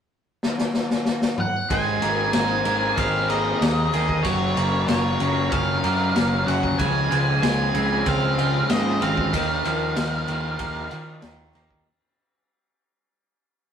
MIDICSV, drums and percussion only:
0, 0, Header, 1, 2, 480
1, 0, Start_track
1, 0, Tempo, 634921
1, 1288, Time_signature, 4, 2, 24, 8
1, 10378, End_track
2, 0, Start_track
2, 0, Title_t, "Drums"
2, 325, Note_on_c, 9, 38, 63
2, 401, Note_off_c, 9, 38, 0
2, 443, Note_on_c, 9, 38, 66
2, 518, Note_off_c, 9, 38, 0
2, 559, Note_on_c, 9, 38, 66
2, 635, Note_off_c, 9, 38, 0
2, 685, Note_on_c, 9, 38, 68
2, 760, Note_off_c, 9, 38, 0
2, 798, Note_on_c, 9, 38, 71
2, 873, Note_off_c, 9, 38, 0
2, 920, Note_on_c, 9, 38, 84
2, 996, Note_off_c, 9, 38, 0
2, 1042, Note_on_c, 9, 45, 89
2, 1117, Note_off_c, 9, 45, 0
2, 1288, Note_on_c, 9, 36, 100
2, 1290, Note_on_c, 9, 51, 80
2, 1364, Note_off_c, 9, 36, 0
2, 1365, Note_off_c, 9, 51, 0
2, 1527, Note_on_c, 9, 51, 57
2, 1603, Note_off_c, 9, 51, 0
2, 1762, Note_on_c, 9, 38, 104
2, 1762, Note_on_c, 9, 51, 98
2, 1838, Note_off_c, 9, 38, 0
2, 1838, Note_off_c, 9, 51, 0
2, 2005, Note_on_c, 9, 51, 65
2, 2081, Note_off_c, 9, 51, 0
2, 2249, Note_on_c, 9, 36, 102
2, 2249, Note_on_c, 9, 51, 92
2, 2325, Note_off_c, 9, 36, 0
2, 2325, Note_off_c, 9, 51, 0
2, 2492, Note_on_c, 9, 51, 63
2, 2568, Note_off_c, 9, 51, 0
2, 2737, Note_on_c, 9, 38, 109
2, 2737, Note_on_c, 9, 51, 88
2, 2813, Note_off_c, 9, 38, 0
2, 2813, Note_off_c, 9, 51, 0
2, 2976, Note_on_c, 9, 38, 28
2, 2976, Note_on_c, 9, 51, 67
2, 3051, Note_off_c, 9, 38, 0
2, 3051, Note_off_c, 9, 51, 0
2, 3092, Note_on_c, 9, 36, 77
2, 3167, Note_off_c, 9, 36, 0
2, 3210, Note_on_c, 9, 36, 87
2, 3210, Note_on_c, 9, 51, 92
2, 3285, Note_off_c, 9, 51, 0
2, 3286, Note_off_c, 9, 36, 0
2, 3455, Note_on_c, 9, 51, 65
2, 3531, Note_off_c, 9, 51, 0
2, 3693, Note_on_c, 9, 38, 103
2, 3693, Note_on_c, 9, 51, 84
2, 3769, Note_off_c, 9, 38, 0
2, 3769, Note_off_c, 9, 51, 0
2, 3932, Note_on_c, 9, 51, 59
2, 4008, Note_off_c, 9, 51, 0
2, 4172, Note_on_c, 9, 51, 77
2, 4174, Note_on_c, 9, 36, 108
2, 4247, Note_off_c, 9, 51, 0
2, 4249, Note_off_c, 9, 36, 0
2, 4413, Note_on_c, 9, 51, 55
2, 4489, Note_off_c, 9, 51, 0
2, 4656, Note_on_c, 9, 38, 103
2, 4656, Note_on_c, 9, 51, 73
2, 4732, Note_off_c, 9, 38, 0
2, 4732, Note_off_c, 9, 51, 0
2, 4900, Note_on_c, 9, 38, 27
2, 4900, Note_on_c, 9, 51, 59
2, 4975, Note_off_c, 9, 38, 0
2, 4975, Note_off_c, 9, 51, 0
2, 5015, Note_on_c, 9, 36, 74
2, 5091, Note_off_c, 9, 36, 0
2, 5136, Note_on_c, 9, 36, 93
2, 5136, Note_on_c, 9, 51, 81
2, 5212, Note_off_c, 9, 36, 0
2, 5212, Note_off_c, 9, 51, 0
2, 5382, Note_on_c, 9, 51, 62
2, 5457, Note_off_c, 9, 51, 0
2, 5618, Note_on_c, 9, 38, 107
2, 5618, Note_on_c, 9, 51, 94
2, 5693, Note_off_c, 9, 38, 0
2, 5693, Note_off_c, 9, 51, 0
2, 5856, Note_on_c, 9, 51, 61
2, 5932, Note_off_c, 9, 51, 0
2, 6094, Note_on_c, 9, 51, 86
2, 6097, Note_on_c, 9, 36, 94
2, 6170, Note_off_c, 9, 51, 0
2, 6173, Note_off_c, 9, 36, 0
2, 6340, Note_on_c, 9, 51, 60
2, 6415, Note_off_c, 9, 51, 0
2, 6574, Note_on_c, 9, 38, 101
2, 6574, Note_on_c, 9, 51, 94
2, 6650, Note_off_c, 9, 38, 0
2, 6650, Note_off_c, 9, 51, 0
2, 6819, Note_on_c, 9, 51, 72
2, 6895, Note_off_c, 9, 51, 0
2, 6936, Note_on_c, 9, 36, 82
2, 7012, Note_off_c, 9, 36, 0
2, 7056, Note_on_c, 9, 36, 83
2, 7059, Note_on_c, 9, 51, 95
2, 7132, Note_off_c, 9, 36, 0
2, 7134, Note_off_c, 9, 51, 0
2, 7298, Note_on_c, 9, 51, 68
2, 7374, Note_off_c, 9, 51, 0
2, 7534, Note_on_c, 9, 38, 108
2, 7534, Note_on_c, 9, 51, 91
2, 7609, Note_off_c, 9, 38, 0
2, 7609, Note_off_c, 9, 51, 0
2, 7773, Note_on_c, 9, 51, 67
2, 7849, Note_off_c, 9, 51, 0
2, 8006, Note_on_c, 9, 51, 80
2, 8011, Note_on_c, 9, 36, 91
2, 8082, Note_off_c, 9, 51, 0
2, 8086, Note_off_c, 9, 36, 0
2, 8246, Note_on_c, 9, 51, 52
2, 8322, Note_off_c, 9, 51, 0
2, 8483, Note_on_c, 9, 38, 109
2, 8483, Note_on_c, 9, 51, 77
2, 8559, Note_off_c, 9, 38, 0
2, 8559, Note_off_c, 9, 51, 0
2, 8732, Note_on_c, 9, 38, 31
2, 8732, Note_on_c, 9, 51, 57
2, 8808, Note_off_c, 9, 38, 0
2, 8808, Note_off_c, 9, 51, 0
2, 8849, Note_on_c, 9, 36, 81
2, 8924, Note_off_c, 9, 36, 0
2, 10378, End_track
0, 0, End_of_file